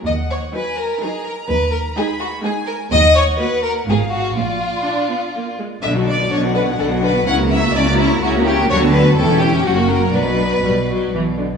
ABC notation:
X:1
M:3/4
L:1/16
Q:1/4=125
K:Ebm
V:1 name="Violin section"
g4 a4 b4- | b4 c'4 a4 | g8 f4 | =d8- d2 z2 |
[K:Bm] d4 f8 | ^a12 | a4 g4 f4 | d8- d2 z2 |]
V:2 name="Violin section"
e2 d2 c2 B2 A2 B2 | c2 B2 A2 G2 A2 B2 | e2 d2 c2 B2 A2 G2 | F8- F2 z2 |
[K:Bm] e2 d2 c2 B2 A2 B2 | f2 e2 d2 E2 F2 G2 | c2 B2 A2 G2 F2 ^A2 | B8 z4 |]
V:3 name="Viola section"
z4 [G,E]3 z [G,E]3 z | z4 [A,E]3 z [A,E]3 z | z4 [B,G]3 z [CF]3 z | z4 =D2 C2 B,2 A,2 |
[K:Bm] [D,D] [F,B,] [D,D] [F,B,] [D,D] [F,B,] [D,D] [F,B,] [D,D] [F,B,] [D,D] [F,B,] | [CE] [^A,F] [CE] [A,F] [CE] [A,F] [CE] [A,F] [CE] [A,F] [CE] [A,F] | [F,D] [B,F] [F,D] [B,F] [CE] [CE] [CE] [CE] [F,C] [^A,F] [F,C] [A,F] | [F,D] [B,F] [F,D] [B,F] G,2 F,2 E,2 D,2 |]
V:4 name="Cello section" clef=bass
E,,4 z8 | E,,4 z8 | E,,4 z4 A,,4 | B,,4 z8 |
[K:Bm] B,,4 B,,4 B,,4 | C,4 C,4 C,4 | D,4 E,,4 F,,4 | B,,4 B,,4 B,,4 |]
V:5 name="Double bass section" clef=bass
E,,4 z8 | E,,4 z8 | E,,4 z4 A,,,4 | B,,,4 z8 |
[K:Bm] B,,,4 B,,,4 B,,,4 | C,,4 C,,4 C,,4 | D,,4 E,,,4 F,,,4 | B,,,4 B,,,4 B,,,4 |]